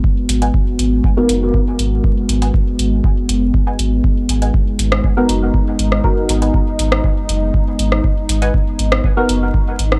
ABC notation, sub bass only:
X:1
M:4/4
L:1/8
Q:1/4=120
K:G#phr
V:1 name="Sub bass" clef=bass
z G,,, z G,,, z F,,, z G,,, | z G,,, z G,,, z F,,, z G,,, | z G,,, z G,,, z F,,, z G,,, | z G,,, z G,,, z F,,, z G,,, |
z G,,, z G,,, z F,,, z G,,, |]